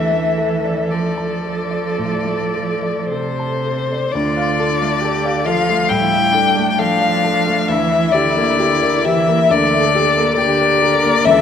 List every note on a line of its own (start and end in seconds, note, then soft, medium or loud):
0.00 1.95 D2 soft
0.00 0.94 E3 medium
0.00 3.92 A4 soft
0.00 0.92 E5 soft
0.10 0.54 A3 soft
0.38 0.81 A4 soft
0.65 1.08 D5 soft
0.90 3.11 F3 soft
0.90 1.35 A4 soft
0.90 3.08 D5 soft
1.17 1.61 A5 soft
1.44 1.88 A4 soft
1.71 2.15 D5 soft
1.98 2.44 A2 soft
2.25 2.72 A3 soft
2.54 3.00 A4 soft
2.82 3.27 D5 soft
3.09 4.10 C3 soft
3.09 3.54 A4 soft
3.09 4.13 C5 medium
3.39 3.81 A5 soft
3.66 4.05 A4 soft
3.92 4.15 D5 soft
4.12 5.87 D2 medium
4.12 5.48 D3 medium
4.12 5.03 F4 soft
4.12 5.47 D5 medium
4.37 4.72 F5 soft
4.60 4.95 A4 soft
4.82 5.17 A3 soft
5.01 5.45 G4 medium
5.01 5.39 A4 soft
5.25 5.60 F5 soft
5.46 5.90 F3 medium
5.46 5.90 F4 medium
5.46 5.82 A4 soft
5.46 5.90 F5 medium
5.69 6.03 A3 soft
5.89 6.25 A2 soft
5.89 6.79 G3 medium
5.89 6.33 E4 medium
5.89 6.70 G5 medium
6.12 6.47 F5 soft
6.32 6.77 D4 medium
6.32 6.70 A4 soft
6.57 6.93 A3 soft
6.70 6.80 G5 medium
6.78 7.68 F3 medium
6.78 7.69 D4 medium
6.78 7.15 A4 soft
6.78 7.69 F5 medium
7.01 7.37 F5 soft
7.24 7.60 A4 soft
7.46 7.69 A3 soft
7.68 9.46 D2 soft
7.68 8.15 E3 medium
7.68 9.51 E4 medium
7.68 8.13 E5 medium
7.91 8.27 E5 soft
8.11 9.06 D3 medium
8.11 8.50 G4 soft
8.11 9.06 D5 medium
8.36 8.73 A#3 soft
8.59 8.96 G4 soft
8.82 9.19 A#4 soft
9.04 9.50 E3 medium
9.04 9.41 G4 soft
9.04 9.52 E5 medium
9.28 9.64 A#3 soft
9.49 11.21 D2 soft
9.49 10.36 D3 medium
9.49 10.38 A4 medium
9.49 10.36 D5 medium
9.74 10.08 E5 soft
9.95 10.30 G4 soft
10.18 10.52 A#3 soft
10.37 11.26 D3 medium
10.37 10.82 G4 medium
10.37 10.73 G4 soft
10.37 11.26 D5 medium
10.60 10.94 A#4 soft
10.81 11.16 G4 soft
10.81 11.26 A#4 medium
11.04 11.25 A#3 soft
11.24 11.41 C#2 medium
11.24 11.41 E3 medium
11.24 11.41 A4 medium
11.24 11.41 E5 medium